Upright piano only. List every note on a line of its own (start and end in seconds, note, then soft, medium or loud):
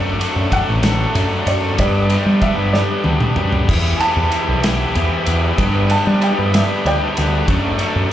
0.00 0.55 D5 medium
0.53 1.51 F#5 loud
1.48 1.78 D5 medium
1.80 2.45 D5 medium
2.42 2.75 E5 medium
2.73 3.41 D5 medium
3.96 4.00 G#5 medium
3.96 5.86 A5 loud
5.91 6.21 A5 medium
6.23 6.53 G5 medium
6.55 6.85 E5 medium
6.87 8.08 D5 medium
6.87 7.48 G5 loud